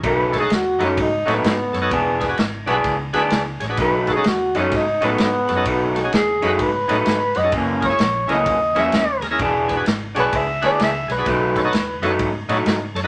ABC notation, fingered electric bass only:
X:1
M:4/4
L:1/8
Q:"Swing" 1/4=128
K:Bmix
V:1 name="Fingered electric bass" clef=bass
B,,,2 D,, F,, G,, A,, G,, F,, | E,,,2 G,,, B,,, C,, =D,, C,, A,,, | B,,,2 D,, F,, G,, A,, G,, F,, | B,,,2 D,, F,, G,, A,, G,, F,, |
F,,,2 ^A,,, C,, D,, E,, D,, D,, | E,,,2 G,,, B,,, C,, =D,, C,, B,,, | B,,,2 D,, F,, G,, A,, G,, F,, |]